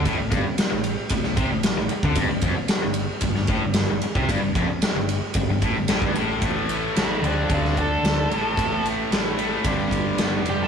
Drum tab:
RD |x-x-x-x-x-x-x-x-|x-x-x-x-x-x-x-x-|x-x-x-x-x-x-x-x-|x-x-x-x-x-x-x-x-|
SD |----o----o--o---|----o----o--o---|----o-------o---|----o----o--o---|
BD |o-o-----o-o----o|o-o-----o-o----o|o-o-----o-o--o--|o-------o-o-----|

RD |x-x-x-x-x-x-x-x-|
SD |----o-------o---|
BD |o-------o-o-----|